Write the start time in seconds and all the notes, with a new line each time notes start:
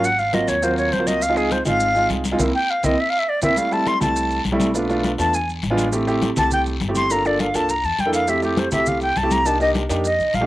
Already playing: G#1
0.04 F#5, high conga, long guiro, maracas
0.19 F5, high conga, maracas
0.33 F#3 A#3 C4 F4 D#5, high conga, short guiro, maracas
0.48 D#2 C#5, short guiro, maracas
0.62 F#3 A#3 C4 F4 C5, high conga, long guiro, maracas
0.78 C#5, high conga, maracas
0.92 C#2 C5, high conga, short guiro, maracas
0.99 F#3 A#3 C4 F4
1.07 D#5, high conga, short guiro, maracas
1.21 F5, high conga, long guiro, maracas
1.29 G#3 C4 D#4 F4
1.37 G#4, high conga, maracas
1.51 C5, high conga, short guiro, maracas
1.65 G#1 G#3 C4 D#4 F4 F5, high conga, low conga, short guiro, maracas
1.80 high conga, long guiro, maracas
1.95 G#3 C4 D#4 F4, high conga, maracas
2.10 C2, high conga, short guiro, maracas
2.24 high conga, short guiro, maracas
2.32 G#3 C4 D#4 F4
2.39 C2 A#3 C4 E4, low conga, long guiro, maracas
2.55 G5
2.70 F5
2.83 C2 A#3 C4 E4 D#5, low conga, long guiro, maracas
3.00 E5
3.10 F5
3.19 E5
3.29 D5
3.41 C2 A#3 C4 E4 E5, low conga, long guiro, maracas
3.56 G3 A3 C4 E4 F5, high conga, long guiro, maracas
3.71 G3 A3 C4 E4 A5, high conga, maracas
3.86 C6, high conga, short guiro, maracas
4.01 C2 G3 A3 C4 E4 A5, high conga, low conga, short guiro, maracas
4.16 high conga, long guiro, maracas
4.31 high conga, maracas
4.45 B1, high conga, short guiro, maracas
4.52 G3 A3 C4 E4
4.60 high conga, short guiro, maracas
4.74 A3 B3 D4 F4, high conga, long guiro, maracas
4.89 A3 B3 D4 F4, high conga, maracas
5.04 high conga, short guiro, maracas
5.18 E2 A3 B3 D4 F4 A5, short guiro, maracas
5.33 G#5, high conga, long guiro, maracas
5.49 high conga, maracas
5.62 A1, high conga, short guiro, maracas
5.70 G#3 B3 D4 F4
5.77 high conga, short guiro, maracas
5.92 A3 C4 E4 G4, high conga, long guiro, maracas
6.07 A3 C4 E4 G4, high conga, maracas
6.22 high conga, short guiro, maracas
6.36 C2 A3 C4 E4 G4 A5, high conga, low conga, short guiro, maracas
6.51 G5, high conga, low conga, long guiro, maracas
6.66 high conga, maracas
6.80 G1, high conga, short guiro, maracas
6.88 A3 C4 E4 G4
6.95 C6, high conga, short guiro, maracas
7.10 A#3 D4 F4 A4 A#5, high conga, long guiro, maracas
7.25 A#3 D4 F4 A4 D5, high conga, maracas
7.39 F5, high conga, short guiro, maracas
7.54 C2 A#3 D4 F4 A4 A5, short guiro, maracas
7.69 A#5, high conga, long guiro, maracas
7.84 E2 A5, high conga, maracas
7.98 F2 G5, high conga, short guiro, maracas
8.06 A#3 D4 E4 A4
8.13 F5, short guiro, maracas
8.27 A3 C4 E4 G4 E5, high conga, long guiro, maracas
8.42 A3 C4 E4 G4, high conga, maracas
8.57 C5, high conga, short guiro, maracas
8.71 C2 A3 C4 E4 G4 E5, high conga, low conga, short guiro, maracas
8.86 F5, high conga, low conga, long guiro, maracas
9.01 G5, high conga, maracas
9.16 C2 A5, high conga, short guiro, maracas
9.23 A3 C4 E4 G4
9.31 A#5, high conga, short guiro, maracas
9.45 A#3 D4 D#4 G4 A5, high conga, long guiro, maracas
9.60 A#3 D4 D#4 G4 D#5, high conga, maracas
9.75 high conga, short guiro, maracas
9.89 F2 A#3 D4 D#4 G4, short guiro, maracas
10.04 D#5, high conga, long guiro, maracas
10.19 C2, high conga, maracas
10.34 A#1 F5, high conga, short guiro, maracas
10.41 A3 D4 D#4 G4